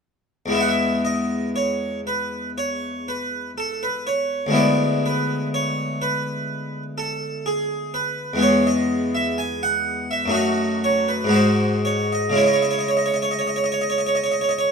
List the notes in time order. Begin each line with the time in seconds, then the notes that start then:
0.46 E2 G#3 B3
0.52 E4 E5
0.61 F#5
0.68 E5
1.05 D#5
1.56 C#5
2.07 B4
2.58 C#5
3.08 B4
3.58 A4
3.83 B4
4.07 C#5
4.47 D2 G#3
4.51 B3 E4
4.55 D5
5.06 B4
5.54 C#5
6.02 B4
6.98 A4
7.46 G#4
7.94 B4
8.34 E2 G#3 B3
8.39 G#4 C#5
8.67 D#5
9.15 E5
9.38 G#5
9.63 F#5
10.11 E5
10.26 F#2 A3 D#4
10.31 F#4 D#5
10.84 C#5
11.08 B4
11.24 G#2 G#3 D#4
11.31 F#4 C5
11.85 C#5
12.12 D#5
12.29 C#3 G#3 C#4
12.35 E4 C#5
12.46 D#5
12.53 C#5
12.62 D#5
12.71 C#5
12.79 D#5
12.88 C#5
12.97 D#5
13.06 C#5
13.14 D#5
13.22 C#5
13.31 D#5
13.39 C#5
13.47 D#5
13.56 C#5
13.64 D#5
13.72 C#5
13.81 D#5
13.90 C#5
13.98 D#5
14.07 C#5
14.15 D#5
14.24 C#5
14.31 D#5
14.41 C#5
14.49 D#5
14.58 C#5